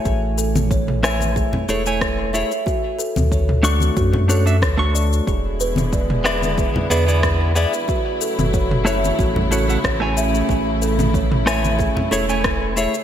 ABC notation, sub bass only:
X:1
M:4/4
L:1/16
Q:"Swing 16ths" 1/4=92
K:A
V:1 name="Sub bass" clef=bass
A,,,8- A,,, z E,,,4- E,,, z | z3 D,,4- D,, F,,4 D,,4 | E,,,8- E,,, z E,,4- E,, z | z3 F,,,4- F,,, A,,,4 A,,,4 |
A,,,8- A,,, z E,,,4- E,,, z |]